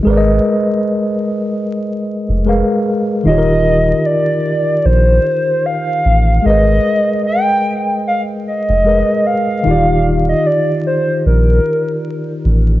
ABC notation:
X:1
M:4/4
L:1/16
Q:"Swing 16ths" 1/4=75
K:Eb
V:1 name="Soft synth lead"
z16 | e4 d4 c4 f4 | e4 g4 f2 e4 f2- | f3 e d2 c2 B6 z2 |]
V:2 name="Tine electric piano"
[A,AB_cde]12 [A,ABcf]4 | [E,EFGB_d]16 | [A,AB_ce]12 [A,ABce]4 | [E,EFGd]16 |]
V:3 name="Sub bass" clef=bass
A,,,2 z8 z F,,,2 z3 | E,,,4 z4 B,,,2 z4 =A,,,2 | A,,,2 z8 z F,,,2 z3 | E,,,4 z4 B,,,2 z4 =A,,,2 |]